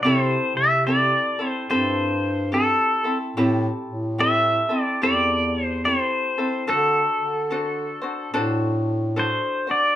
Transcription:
0.03 0.37 C3 medium
0.03 0.87 C4 medium
0.03 0.88 E4 medium
0.03 0.86 G4 medium
0.03 0.88 A4 medium
0.03 0.23 C#5 medium
0.23 0.57 C5 medium
0.55 1.16 C3 medium
0.55 0.86 E5 medium
0.87 1.39 C4 medium
0.87 1.39 E4 medium
0.87 1.39 G4 soft
0.87 1.38 A4 medium
0.87 1.49 D5 medium
1.39 1.69 C4 soft
1.39 1.69 E4 soft
1.39 1.70 A4 soft
1.49 1.71 C5 medium
1.70 2.78 G2 medium
1.70 2.53 C4 medium
1.70 2.53 E4 medium
1.70 2.51 G4 medium
1.70 2.54 A4 medium
1.70 2.56 C5 medium
2.52 3.05 C4 soft
2.52 3.04 E4 medium
2.52 3.04 G4 soft
2.52 3.17 A4 medium
2.52 3.03 A4 medium
3.04 3.36 C4 soft
3.04 3.36 E4 soft
3.04 3.36 A4 soft
3.36 3.70 A2 loud
3.36 4.19 C4 medium
3.36 4.18 E4 medium
3.36 4.17 G4 medium
3.36 4.19 A4 medium
3.88 4.62 A2 medium
4.18 4.70 C4 medium
4.18 4.69 E4 medium
4.18 4.71 G4 medium
4.18 4.68 A4 medium
4.18 4.81 E5 medium
4.69 5.01 C4 soft
4.69 5.02 E4 soft
4.69 5.01 A4 soft
4.81 5.03 D5 medium
5.02 5.97 E2 medium
5.02 5.85 C4 medium
5.02 5.84 E4 medium
5.02 5.83 G4 medium
5.02 5.87 A4 medium
5.02 5.64 D5 medium
5.64 5.85 C5 medium
5.85 6.37 C4 soft
5.85 6.37 E4 medium
5.85 6.37 G4 soft
5.85 6.37 A4 soft
5.85 6.71 C5 medium
6.38 6.67 C4 soft
6.38 6.68 E4 soft
6.38 6.66 A4 soft
6.67 7.02 D3 loud
6.67 7.51 D4 medium
6.67 7.51 F#4 medium
6.67 7.49 A4 medium
6.67 8.31 A4 medium
6.67 7.51 C5 medium
7.19 7.94 D3 medium
7.50 8.03 D4 medium
7.50 8.02 F#4 medium
7.50 8.02 A4 medium
7.50 8.00 C5 medium
8.02 8.33 D4 soft
8.02 8.33 F#4 soft
8.02 8.33 C5 medium
8.33 9.41 A2 medium
8.33 9.16 D4 medium
8.33 9.16 F#4 medium
8.33 9.15 A4 medium
8.33 9.16 C5 medium
9.16 9.68 D4 medium
9.16 9.67 F#4 medium
9.16 9.68 A4 soft
9.16 9.66 C5 medium
9.16 9.71 C5 medium
9.67 9.96 D4 soft
9.67 9.96 F#4 soft
9.67 9.96 C5 soft
9.67 9.96 D5 medium

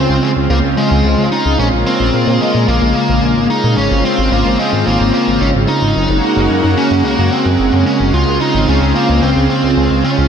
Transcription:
0.00 1.57 C#3 medium
0.00 5.92 G#3 medium
0.00 0.24 C4 medium
0.00 1.57 C4 medium
0.00 3.73 F4 medium
0.09 0.20 C#2 medium
0.23 0.30 G#3 medium
0.37 0.48 C#2 medium
0.50 0.61 C#2 loud
0.50 0.57 A#3 medium
0.64 0.75 C#2 medium
0.77 1.28 G#3 medium
0.91 1.02 C#2 medium
1.05 1.16 C#2 loud
1.18 1.30 C#2 medium
1.32 1.59 D#4 medium
1.46 1.57 C#2 medium
1.59 1.70 A#1 loud
1.59 10.28 C#3 medium
1.59 3.75 A#3 medium
1.59 1.67 C#4 loud
1.73 1.84 A#1 medium
1.87 2.43 C4 loud
2.00 2.11 A#1 medium
2.14 2.25 A#2 medium
2.27 2.39 A#2 medium
2.41 2.66 G#3 medium
2.55 2.66 A#2 medium
2.68 2.79 A#1 loud
2.68 2.94 A#3 loud
2.82 2.93 A#1 medium
2.95 3.46 A#3 loud
3.09 3.20 A#1 medium
3.23 3.34 A#1 loud
3.37 3.48 G#1 medium
3.50 3.77 D#4 medium
3.64 3.75 A#2 medium
3.77 3.89 G#1 loud
3.77 5.94 C4 medium
3.77 4.05 C#4 loud
3.77 5.94 F4 medium
3.91 4.02 G#1 medium
4.05 4.30 C4 medium
4.18 4.30 G#1 medium
4.32 4.43 G#1 loud
4.32 4.57 A#3 loud
4.46 4.57 G#1 medium
4.59 4.85 G#3 medium
4.73 4.84 G#1 medium
4.87 4.98 G#1 loud
4.87 5.12 A#3 loud
5.00 5.11 G#1 medium
5.14 5.39 A#3 medium
5.27 5.39 G#1 medium
5.41 5.52 G#1 loud
5.41 5.48 C#4 loud
5.55 5.66 G#1 medium
5.68 6.73 D#4 loud
5.82 5.93 G#1 medium
5.96 6.07 F#1 loud
5.96 10.28 G#3 medium
5.96 8.12 A#3 medium
5.96 8.12 F#4 loud
6.09 6.21 F#1 medium
6.37 6.48 F#1 medium
6.50 6.61 F#2 loud
6.64 6.75 F#2 medium
6.77 7.03 C#4 loud
6.91 7.02 F#2 medium
7.05 7.16 C#2 loud
7.05 7.30 A#3 loud
7.19 7.30 F#2 medium
7.32 7.86 C4 loud
7.46 7.57 F#2 medium
7.59 7.70 F#1 loud
7.73 7.84 F#2 medium
7.86 8.12 C#4 loud
8.00 8.11 F#1 medium
8.14 8.25 C#2 loud
8.14 10.28 C4 medium
8.14 8.41 F4 loud
8.14 10.28 F4 medium
8.27 8.39 C#2 medium
8.41 8.69 D#4 loud
8.55 8.66 G#1 medium
8.68 8.79 C#2 loud
8.68 8.94 C#4 loud
8.82 8.93 C#2 medium
8.95 9.22 A#3 medium
9.09 9.20 C#2 medium
9.23 9.34 C#2 loud
9.23 9.49 C4 loud
9.37 9.48 C#2 medium
9.50 10.04 C4 loud
9.64 9.75 C#2 medium
9.77 9.88 C#2 loud
9.91 10.02 C#2 medium
10.04 10.28 C#4 medium
10.18 10.28 C#2 medium

